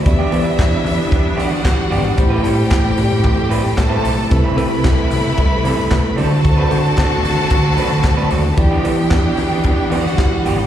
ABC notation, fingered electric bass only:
X:1
M:4/4
L:1/16
Q:1/4=113
K:Em
V:1 name="Fingered electric bass" clef=bass
E,,2 E,2 E,,2 E, E, E,,2 E, E, E,2 ^G,,,2 | A,,,2 A,,2 A,,,2 A,, A,, A,,,2 A,, A,, A,,2 B,,,2 | C,,2 C,2 C,,2 C, C, C,,2 C, C, C,2 D,,2- | D,,2 D,2 D,,2 D, D, D,,2 D, D, D,2 ^D,,2 |
E,,2 E,2 E,,2 E, E, E,,2 E, E, E,2 ^G,,,2 |]